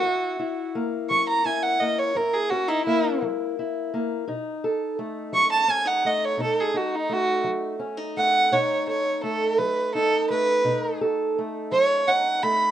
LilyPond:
<<
  \new Staff \with { instrumentName = "Fiddle" } { \time 12/8 \key b \major \tempo 4. = 57 fis'4 r8 cis'''16 ais''16 gis''16 fis''16 dis''16 cis''16 ais'16 gis'16 fis'16 dis'16 e'8 r4. | r4. cis'''16 a''16 gis''16 fis''16 dis''16 cis''16 a'16 gis'16 fis'16 dis'16 fis'8 r4 fis''8 | cis''8 cis''8 a'8 b'8 a'8 b'4 r4 cis''8 fis''8 b''8 | }
  \new Staff \with { instrumentName = "Steel-string acoustic guitar" } { \time 12/8 \key b \major << { e'8 e'8 ais4 e'8 ais8 e'8 cis'16 e'16 ais4 e'8 ais8 | dis'8 a'8 a4 cis'16 dis'16 a8 dis'8 dis'8 a4 cis'16 dis'16 a8 | dis'8 a'8 a4 dis'8 a8 dis'8 a'8 a4 dis'8 a8 | } \\ { fis,4 r8 fis4 r8 fis,4 r8 fis4 r8 | b,4 r8 fis4 r8 b,4 r8 fis4 r8 | b,4 r8 fis4 r8 b,4 r8 fis4 r8 | } >> }
>>